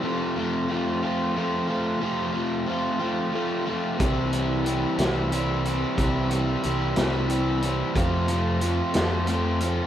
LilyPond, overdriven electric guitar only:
\new Staff \with { instrumentName = "Overdriven electric guitar" } { \time 6/8 \key f \lydian \tempo 4. = 61 <f, c f a c' f'>8 <f a c' f'>8 <f a c' f'>8 <f a c' f'>8 <f a c' f'>8 <f a c' f'>8 | <f, c f a c' f'>8 <f a c' f'>8 <f a c' f'>8 <f a c' f'>8 <f a c' f'>8 <f a c' f'>8 | <c e g c' e'>8 <g c' e'>8 <e g c' e'>8 <g c' e'>8 <e g c' e'>8 <g c' e'>8 | <c e g c' e'>8 <g c' e'>8 <e g c' e'>8 <g c' e'>8 <e g c' e'>8 <g c' e'>8 |
<f, c f a c' f'>8 <f a c' f'>8 <f a c' f'>8 <f a c' f'>8 <f a c' f'>8 <f a c' f'>8 | }